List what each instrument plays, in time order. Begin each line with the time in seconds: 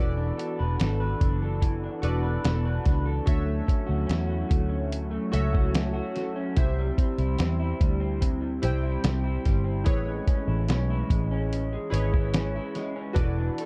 Already playing: fingered electric bass E1, clean electric guitar E3 E4, analog synth pad E3 B3 D4 F#4 A4, synth keys F#4 A4 B4 D5
0.17 clean electric guitar D4
0.37 clean electric guitar A4, closed hi-hat
0.59 fingered electric bass E1, clean electric guitar B4
0.80 fingered electric bass G#1, clean electric guitar A4, snare, closed hi-hat
1.00 clean electric guitar B4
1.21 fingered electric bass F#1, clean electric guitar D4, kick, closed hi-hat
1.42 clean electric guitar A4
1.61 clean electric guitar E3, kick, closed hi-hat
1.84 clean electric guitar D4
2.02 fingered electric bass E1, synth keys F#4 A4 B4 D5, clean electric guitar A4, closed hi-hat
2.23 clean electric guitar B4
2.44 fingered electric bass E1, clean electric guitar A4, snare, closed hi-hat
2.65 clean electric guitar B4
2.85 fingered electric bass C#2, clean electric guitar D4, kick, snare, closed hi-hat
3.06 clean electric guitar A4
3.26 fingered electric bass D2, clean electric guitar D3, analog synth pad F#3 A3 C#4 E4, synth keys F#4 A4 C#5 E5, kick, closed hi-hat
3.46 clean electric guitar A3
3.66 clean electric guitar C#4, kick, closed hi-hat
3.87 fingered electric bass D2, clean electric guitar F#4
4.07 fingered electric bass E2, clean electric guitar C#4, closed hi-hat
4.11 snare
4.27 clean electric guitar F#4
4.49 fingered electric bass D2, clean electric guitar A3, kick, closed hi-hat
4.69 clean electric guitar C#4
4.92 closed hi-hat
5.11 clean electric guitar A3
5.32 fingered electric bass C#2, clean electric guitar C#4, synth keys F#4 A4 C#5 E5, closed hi-hat
5.53 clean electric guitar F#4, kick
5.73 clean electric guitar C#4, snare, closed hi-hat
5.93 clean electric guitar F#4
6.15 clean electric guitar A3, snare, closed hi-hat
6.36 clean electric guitar C#4
6.56 fingered electric bass C2, clean electric guitar C3, analog synth pad G3 C4 E4, synth keys E4 G4 C5 E5, kick, closed hi-hat
6.78 clean electric guitar G3
6.98 clean electric guitar C4, kick, closed hi-hat
7.18 fingered electric bass C2, clean electric guitar E4, closed hi-hat
7.38 fingered electric bass E2, clean electric guitar C4, snare, closed hi-hat
7.60 clean electric guitar E4
7.80 fingered electric bass D2, clean electric guitar G3, kick, closed hi-hat
8.00 clean electric guitar C4
8.21 clean electric guitar C3, kick, closed hi-hat
8.41 clean electric guitar G3
8.62 fingered electric bass C2, clean electric guitar C4, synth keys E4 G4 C5 G5, closed hi-hat
8.83 clean electric guitar E4
9.04 fingered electric bass C2, clean electric guitar C4, snare, closed hi-hat
9.24 clean electric guitar E4
9.45 fingered electric bass G1, clean electric guitar G3, kick, snare, closed hi-hat
9.64 clean electric guitar C4
9.84 fingered electric bass A1, clean electric guitar A2, analog synth pad G#3 C#4, synth keys E4 G#4 B4 C#5, kick, closed hi-hat
9.89 analog synth pad E3
10.05 clean electric guitar G#3
10.27 clean electric guitar C#4, kick, closed hi-hat
10.48 fingered electric bass A1, clean electric guitar E4
10.68 fingered electric bass B1, clean electric guitar C#4, snare, closed hi-hat
10.90 clean electric guitar E4
11.10 fingered electric bass A1, clean electric guitar G#3, kick, closed hi-hat
11.31 clean electric guitar C#4
11.53 closed hi-hat
11.73 clean electric guitar G#3
11.90 fingered electric bass G#1, clean electric guitar C#4, synth keys E4 G#4 B4 C#5, closed hi-hat
12.13 clean electric guitar E4, kick
12.34 clean electric guitar C#4, snare, closed hi-hat
12.56 clean electric guitar E4
12.75 clean electric guitar G#3, snare, closed hi-hat
12.96 clean electric guitar C#4
13.13 fingered electric bass E1, analog synth pad E3 B3 D4 F#4 A4, synth keys F#4 A4 B4 D5, kick, closed hi-hat
13.18 clean electric guitar E3
13.38 clean electric guitar D4
13.58 clean electric guitar A4, closed hi-hat